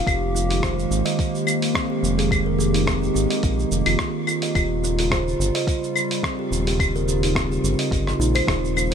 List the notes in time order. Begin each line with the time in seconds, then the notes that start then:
Already playing: G4
0.07 F1 D#3 G#3 A#3 F4, kick, open hi-hat, claves, shaker
0.35 F4, shaker
0.50 F4, open hi-hat, shaker
0.63 C5, kick, cross-stick, open hi-hat, shaker
0.79 shaker
0.91 G#1, shaker
1.05 D#5, open hi-hat, shaker
1.19 kick, open hi-hat, shaker
1.35 shaker
1.47 claves, shaker
1.62 open hi-hat, shaker
1.75 C4, kick, cross-stick, open hi-hat, shaker
1.90 G4
2.03 F1, shaker
2.18 G#4, open hi-hat, shaker
2.31 kick, open hi-hat, claves, shaker
2.46 A#4
2.59 G#4, shaker
2.74 D#4, open hi-hat, shaker
2.87 C4, kick, cross-stick, open hi-hat, shaker
3.02 G4, shaker
3.14 G#1 C4, shaker
3.30 D#5, open hi-hat, shaker
3.43 A#1, kick, open hi-hat, shaker
3.59 shaker
3.71 F1, shaker
3.86 F1 F4, open hi-hat, claves, shaker
3.99 kick, cross-stick, open hi-hat, shaker
4.27 F4, claves, shaker
4.42 D#5, open hi-hat, shaker
4.55 D#1 C#3 G3 F4, kick, open hi-hat, claves, shaker
4.84 F4, shaker
4.99 F4, open hi-hat, shaker
5.11 C5, kick, cross-stick, open hi-hat, shaker
5.28 shaker
5.39 G1, shaker
5.55 D#5, open hi-hat, shaker
5.67 kick, open hi-hat, shaker
5.84 shaker
5.96 claves, shaker
6.11 open hi-hat, shaker
6.23 C4, kick, cross-stick, open hi-hat, shaker
6.39 G4
6.51 D#1, shaker
6.67 G4, open hi-hat, shaker
6.79 kick, open hi-hat, claves, shaker
6.95 A#4, shaker
7.08 G4, shaker
7.23 D#4, open hi-hat, shaker
7.35 C4, kick, cross-stick, open hi-hat, shaker
7.52 G4, shaker
7.63 G1 C4, shaker
7.79 D#5, open hi-hat, shaker
7.91 G1, kick, open hi-hat, shaker
8.07 cross-stick, shaker
8.19 A#1 D#4, shaker
8.35 C5, open hi-hat, claves, shaker
8.47 D#1 D#4, kick, cross-stick, open hi-hat, shaker
8.63 C4, shaker
8.76 F4, claves, shaker